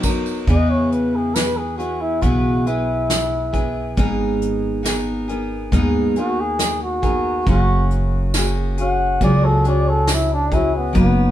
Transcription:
0.03 F#3 B3 D#4 A#4, kick, ride, tambourine
0.26 tambourine
0.47 E2 C#3 E3 B3 E4 G#4 B4 D#5, kick, closed hi-hat
0.70 C#5
0.92 B4, closed hi-hat
1.15 G#4
1.35 B3 E4 G#4 B4, snare, closed hi-hat, tambourine
1.57 G#4
1.78 B3 E4 F#4 G#4 B4, closed hi-hat
2.01 E4
2.21 B1 C#3 E3 B3 E4 F#4 G#4 B4, kick, closed hi-hat
2.66 B3 E4 G#4 B4, closed hi-hat
3.10 snare, closed hi-hat, tambourine
3.53 B3 E4 G#4 B4, kick, closed hi-hat
3.97 G#1 G#2 G#3 B3 D#4 G#4 A#4, kick, closed hi-hat
4.42 closed hi-hat
4.83 B3 D#4 G#4 A#4, snare, closed hi-hat, tambourine
5.28 B3 D#4 G#4 A#4, closed hi-hat
5.72 D#2 G#2 G#3 B3 D#4 G#4 A#4, kick, closed hi-hat
6.16 B3 D#4 F#4 G#4 A#4, closed hi-hat
6.40 G#4
6.59 snare, closed hi-hat, tambourine
6.83 F#4
7.02 B3 D#4 G#4 A#4, kick, closed hi-hat
7.47 F#1 F#3 A#3 C#4 F#4 G#4, kick, closed hi-hat
7.91 closed hi-hat
8.34 A#3 C#4 F#4 G#4, snare, closed hi-hat, tambourine
8.78 C#4 F#4 G#4 F#5, closed hi-hat
9.21 C#2 F#3 A#3 C#4 F#4 G#4 D5, kick, closed hi-hat
9.45 A4
9.64 C#4 F#4 G#4 D5, closed hi-hat
9.88 A4
10.07 snare, closed hi-hat, tambourine
10.12 E4
10.33 D4
10.52 C#4 E4 F#4 G#4, kick, closed hi-hat
10.76 B3
10.93 F#1 F#3 B3 D#4 B4, kick, closed hi-hat
10.99 B3

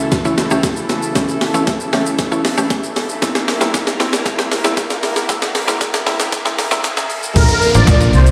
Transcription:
Already playing: C#3 E3 A3 E4 A4, riser
0.12 kick, snare, closed hi-hat, shaker
0.25 C#2 E3 A3 C#4 E4, shaker
0.38 snare, closed hi-hat, shaker
0.50 C#2 E3 A3 C#4 G4, shaker
0.63 kick, snare, closed hi-hat, shaker
0.76 shaker
0.89 snare, closed hi-hat, shaker
1.02 shaker
1.15 C#2 E3 A3 C#4 G4, kick, snare, closed hi-hat, shaker
1.28 shaker
1.41 snare, open hi-hat, shaker
1.54 C#2 E3 A3 C#4 E4, shaker
1.67 kick, snare, closed hi-hat, shaker
1.80 shaker
1.93 C#2 E3 A3 C#4 G4, snare, open hi-hat, shaker
2.06 shaker
2.19 kick, snare, closed hi-hat, shaker
2.31 C#2 E3 A3 C#4 E4, shaker
2.45 snare, open hi-hat, shaker
2.57 C#2 E3 A3 C#4 G4, shaker
2.70 kick, snare, closed hi-hat, shaker
2.83 shaker
2.96 snare, open hi-hat, shaker
3.09 shaker
3.22 C3 G3 A#3 C4 E4 A#4, kick, snare, closed hi-hat, shaker
3.35 snare, shaker
3.48 snare, open hi-hat, shaker
3.61 G3 A#3 C4 E4, snare, shaker
3.74 kick, snare, closed hi-hat, shaker
3.87 snare, shaker
4.00 G3 A#3 C4 E4, snare, open hi-hat, shaker
4.13 snare, shaker
4.26 kick, snare, closed hi-hat, shaker
4.38 G3 A#3 C4 G4, snare, shaker
4.52 snare, open hi-hat, shaker
4.64 G3 A#3 C4 E4, snare, shaker
4.77 kick, snare, closed hi-hat, shaker
4.90 snare, shaker
5.03 snare, open hi-hat, shaker
5.16 snare, shaker
5.29 G3 A#3 C4 E4, kick, snare, closed hi-hat, shaker
5.42 snare, shaker
5.55 snare, open hi-hat, shaker
5.67 G3 A#3 C4 E4, snare, shaker
5.81 kick, snare, closed hi-hat, shaker
5.94 snare, shaker
6.06 G3 A#3 C4 E4, snare, open hi-hat, shaker
6.20 snare, shaker
6.32 kick, snare, closed hi-hat, shaker
6.45 G3 A#3 C4 E4, snare, shaker
6.59 snare, open hi-hat, shaker
6.71 G3 A#3 C4 E4, snare, shaker
6.84 snare, closed hi-hat, shaker
6.97 snare, shaker
7.10 open hi-hat, shaker
7.23 shaker
7.36 A#1 D3 F3 A#3 D4 F4 A#4, kick, crash, downlifter, shaker
7.49 closed hi-hat, shaker
7.62 open hi-hat, shaker
7.75 A1 F3 A#3 D4 F4 C5 D5, closed hi-hat, shaker
7.88 A#1, kick, snare, clap, shaker
8.01 F3 A#3 D4 F4 A#4, closed hi-hat, shaker
8.13 C2 C5, open hi-hat, shaker
8.26 closed hi-hat, shaker

